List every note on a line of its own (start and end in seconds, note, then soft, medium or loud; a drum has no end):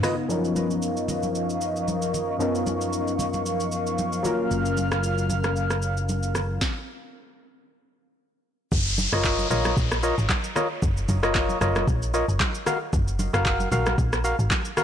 0.00 0.28 C#3 medium
0.00 0.28 B3 medium
0.00 0.28 D#4 medium
0.00 0.15 F4 medium
0.00 0.15 B4 medium
0.00 0.15 D#5 medium
0.00 0.26 F5 medium
0.00 cross-stick loud
0.00 open hi-hat medium
0.00 low conga medium
0.00 shaker loud
0.28 2.36 F#2 medium
0.28 2.36 F3 medium
0.28 4.21 F3 medium
0.28 2.36 B3 medium
0.28 2.37 C#4 medium
0.28 2.37 D#4 medium
0.28 6.57 A#4 medium
0.28 2.37 A#4 medium
0.28 4.21 D#5 medium
0.28 2.38 F5 medium
0.28 4.21 C#6 medium
0.28 shaker medium
0.45 shaker soft
0.56 high conga medium
0.56 shaker medium
0.71 shaker medium
0.82 shaker medium
0.97 shaker soft
1.08 high conga medium
1.08 low conga medium
1.08 shaker medium
1.23 high conga medium
1.23 shaker soft
1.35 shaker medium
1.50 shaker medium
1.61 shaker medium
1.76 shaker medium
1.88 high conga medium
1.88 shaker medium
2.02 shaker medium
2.14 low conga medium
2.14 shaker medium
2.39 4.20 F#2 medium
2.39 4.20 F3 medium
2.39 4.21 B3 medium
2.39 4.21 C#4 medium
2.39 4.21 D#4 medium
2.39 4.22 A#4 medium
2.39 6.57 F5 medium
2.39 shaker medium
2.55 shaker soft
2.67 high conga medium
2.67 shaker medium
2.81 shaker medium
2.93 shaker medium
3.08 shaker soft
3.19 high conga medium
3.19 low conga medium
3.19 shaker medium
3.33 high conga medium
3.33 shaker soft
3.46 shaker medium
3.60 shaker medium
3.72 shaker medium
3.87 shaker medium
3.98 high conga medium
3.98 shaker medium
4.13 shaker medium
4.23 6.30 F#3 medium
4.23 6.31 A#3 medium
4.23 6.31 C#4 medium
4.23 6.31 F4 medium
4.23 6.32 A#4 medium
4.23 6.59 F6 medium
4.23 low conga medium
4.23 shaker medium
4.51 6.57 F#1 medium
4.51 shaker medium
4.66 shaker medium
4.77 high conga medium
4.77 shaker medium
4.92 cross-stick loud
4.92 shaker medium
5.03 shaker medium
5.18 shaker medium
5.30 high conga medium
5.30 low conga medium
5.30 shaker medium
5.44 cross-stick medium
5.44 high conga medium
5.44 shaker soft
5.56 shaker medium
5.70 cross-stick medium
5.70 shaker medium
5.82 shaker medium
5.97 shaker medium
6.09 high conga medium
6.09 shaker medium
6.23 shaker medium
6.35 cross-stick medium
6.35 low conga medium
6.35 shaker medium
6.61 kick loud
6.61 snare medium
8.72 9.08 F#1 loud
8.72 kick loud
8.72 downlifter medium
8.72 shaker medium
8.86 shaker medium
8.98 high conga medium
8.98 shaker medium
9.12 9.47 F#1 loud
9.12 9.48 F4 medium
9.12 9.48 A#4 medium
9.12 9.48 C#5 medium
9.12 9.48 D#5 medium
9.12 cross-stick loud
9.12 shaker medium
9.24 kick loud
9.24 clap medium
9.24 shaker medium
9.39 high conga soft
9.39 shaker medium
9.50 9.74 A#1 medium
9.50 9.75 F4 medium
9.50 9.75 A#4 medium
9.50 9.75 C#5 medium
9.50 9.75 D#5 medium
9.50 high conga medium
9.50 low conga medium
9.50 shaker medium
9.65 cross-stick loud
9.65 high conga medium
9.65 shaker medium
9.77 10.13 A#1 loud
9.77 kick loud
9.77 shaker medium
9.92 cross-stick loud
9.92 shaker medium
10.03 10.15 F4 medium
10.03 10.15 A#4 medium
10.03 10.15 C#5 medium
10.03 10.15 D#5 medium
10.03 shaker medium
10.18 10.29 G#1 medium
10.18 shaker medium
10.29 kick loud
10.29 clap medium
10.29 high conga medium
10.29 shaker medium
10.44 shaker medium
10.56 10.68 F4 medium
10.56 10.68 A#4 medium
10.56 10.68 C#5 medium
10.56 10.68 D#5 medium
10.56 cross-stick loud
10.56 low conga medium
10.56 shaker loud
10.82 11.06 F#1 loud
10.82 kick loud
10.82 shaker medium
10.97 shaker medium
11.09 11.55 F#1 loud
11.09 high conga medium
11.09 shaker medium
11.23 11.58 F4 medium
11.23 11.58 A#4 medium
11.23 11.59 C#5 medium
11.23 11.59 D#5 medium
11.23 cross-stick loud
11.23 shaker medium
11.35 kick loud
11.35 clap loud
11.35 shaker medium
11.49 high conga medium
11.49 shaker medium
11.61 11.85 F#1 loud
11.61 11.86 F4 medium
11.61 11.86 A#4 medium
11.61 11.86 C#5 medium
11.61 11.86 D#5 medium
11.61 cross-stick loud
11.61 high conga medium
11.61 low conga medium
11.61 shaker medium
11.76 cross-stick loud
11.76 high conga medium
11.76 shaker medium
11.87 12.24 A#1 loud
11.87 kick loud
11.87 shaker medium
12.02 shaker medium
12.14 12.26 F4 medium
12.14 12.26 A#4 medium
12.14 12.26 C#5 medium
12.14 12.26 D#5 medium
12.14 shaker medium
12.28 12.39 F#1 medium
12.28 shaker medium
12.40 kick loud
12.40 clap medium
12.40 high conga medium
12.40 shaker medium
12.55 shaker medium
12.66 12.78 F#4 medium
12.66 12.78 A#4 medium
12.66 12.79 F5 medium
12.66 cross-stick medium
12.66 low conga medium
12.66 shaker loud
12.93 13.29 F#1 loud
12.93 kick loud
12.93 shaker medium
13.08 shaker medium
13.19 high conga medium
13.19 shaker medium
13.33 13.68 F#1 loud
13.33 13.69 F#4 medium
13.33 13.69 A#4 medium
13.33 13.69 F5 medium
13.33 cross-stick loud
13.33 shaker medium
13.46 kick loud
13.46 clap medium
13.46 shaker medium
13.60 high conga medium
13.60 shaker medium
13.72 13.95 A#1 loud
13.72 13.96 F#4 medium
13.72 13.96 A#4 medium
13.72 13.97 F5 medium
13.72 high conga medium
13.72 low conga medium
13.72 shaker loud
13.86 cross-stick loud
13.86 high conga medium
13.86 shaker medium
13.98 14.34 A#1 loud
13.98 kick loud
13.98 shaker medium
14.13 cross-stick loud
14.13 shaker medium
14.24 14.36 F#4 medium
14.24 14.36 A#4 medium
14.24 14.36 F5 medium
14.24 shaker medium
14.39 14.50 G#1 medium
14.39 shaker medium
14.51 kick loud
14.51 clap loud
14.51 high conga medium
14.51 shaker medium
14.65 shaker medium
14.77 14.84 F#4 medium
14.77 14.84 A#4 medium
14.77 14.84 F5 medium
14.77 cross-stick loud
14.77 low conga medium
14.77 shaker loud